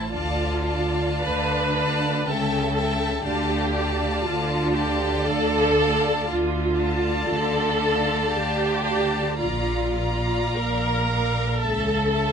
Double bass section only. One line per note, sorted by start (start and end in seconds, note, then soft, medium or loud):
0.11 1.11 D2 medium
1.24 2.14 D2 medium
2.26 3.12 C#2 medium
3.23 4.11 D2 medium
4.24 5.14 D2 medium
5.26 6.17 D2 medium
6.29 7.17 D2 medium
7.29 8.20 D2 medium
8.32 9.26 D2 medium
9.39 10.40 A#1 medium
10.54 11.48 A#1 medium
11.60 12.32 C#2 soft